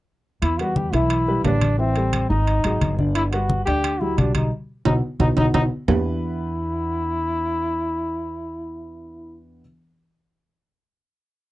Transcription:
0.42 upright bass E2, trombone E4, high conga, high timbale
0.59 grand piano G3 G4 B4, trombone F#4, high conga, high timbale
0.76 trombone G4, high conga
0.93 upright bass B1, grand piano E3 E4 E5, trombone E4, high conga, high timbale
1.10 high conga, high timbale
1.27 grand piano G3 G4 B4, high conga
1.44 upright bass A1, grand piano G3 G4 B4, trombone D4, high conga, high timbale, low timbale
1.61 high conga, high timbale
1.79 grand piano E3 E4 E5, trombone C4, high conga
1.96 grand piano G3 G4 A4, high conga, high timbale
2.13 high conga, high timbale
2.29 upright bass G#1, grand piano D#3 D#4 D#5, trombone D#4, high conga
2.47 high conga, high timbale
2.64 upright bass G#1, grand piano F#3 F#4 G#4, high conga, high timbale
2.81 upright bass G1, high conga, high timbale
2.98 grand piano D3 D4 D5, high conga
3.15 trombone E4, high conga, high timbale
3.32 grand piano G3 F#4 B4, trombone F#4, high conga, high timbale
3.50 high conga
3.65 upright bass D2, grand piano D3 D4 D5, trombone G4, high conga, high timbale
3.84 high conga, high timbale
4.01 grand piano F#3 F#4 G4, trombone E4, high conga
4.18 upright bass B1, grand piano G3 F#4 G4, trombone D4, high conga, high timbale
4.35 trombone D#4, high conga, high timbale
4.85 upright bass B1, grand piano B3 D#4 F#4, trombone D#4, high conga, high timbale
5.20 upright bass B1, grand piano B3 D#4 F#4, trombone D#4, high conga, high timbale
5.37 upright bass B1, grand piano B3 D#4 F#4, trombone D#4, high conga, high timbale
5.54 upright bass B1, grand piano B3 D#4 F#4, trombone D#4, high conga, high timbale
5.88 upright bass E2, grand piano E3 B3 D4 E4 G4 B4, trombone E4, low conga, low timbale

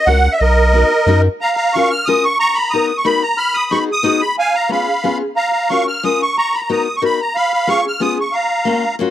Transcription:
0.06 sub bass C#2, steel-string acoustic guitar C#4 E4 F#4 A#4, accordion F#5
0.32 accordion E5
0.39 sub bass B1, accordion A#4 D#5
0.73 steel-string acoustic guitar B3 D#4 F#4 A#4
1.06 sub bass F#2, steel-string acoustic guitar B3 D#4 F#4 A#4
1.41 accordion F5 A#5
1.57 accordion A#5
1.73 steel-string acoustic guitar C#4 F4 F#4 A#4, accordion C#6
1.91 accordion F6
2.06 steel-string acoustic guitar C#4 F4 F#4 A#4, accordion D#6
2.24 accordion C#6
2.40 accordion A#5 C#6
2.54 accordion B5
2.70 steel-string acoustic guitar B3 D#4 F#4 A#4, accordion D#6
2.97 accordion C#6
3.05 steel-string acoustic guitar B3 D#4 F#4 A#4, accordion B5
3.23 accordion A#5
3.38 accordion B5 F6
3.54 accordion D#6
3.71 steel-string acoustic guitar B3 D#4 F#4 G#4, accordion C#6
3.92 accordion D#6
4.03 steel-string acoustic guitar B3 D#4 F#4 G#4
4.21 accordion B5
4.39 accordion F5 G#5
4.55 accordion A#5
4.69 steel-string acoustic guitar B3 C#4 F4 G#4, accordion F5 B5
5.04 steel-string acoustic guitar B3 C#4 F4 G#4
5.36 accordion F5 A#5
5.53 accordion A#5
5.70 steel-string acoustic guitar C#4 F4 F#4 A#4, accordion C#6
5.88 accordion F6
6.03 steel-string acoustic guitar C#4 F4 F#4 A#4, accordion D#6
6.22 accordion C#6
6.37 accordion A#5 C#6
6.54 accordion B5
6.69 steel-string acoustic guitar B3 D#4 F#4 A#4, accordion D#6
6.96 accordion C#6
7.02 steel-string acoustic guitar B3 D#4 F#4 A#4, accordion B5
7.21 accordion A#5
7.35 accordion F5 B5
7.54 accordion B5
7.67 steel-string acoustic guitar B3 C#4 F4 G#4, accordion C#6
7.88 accordion F6
8.00 steel-string acoustic guitar B3 C#4 F4 G#4, accordion D#6
8.21 accordion C#6
8.32 accordion F5 A#5
8.65 steel-string acoustic guitar A#3 C#4 F4 F#4
8.99 steel-string acoustic guitar A#3 C#4 F4 F#4

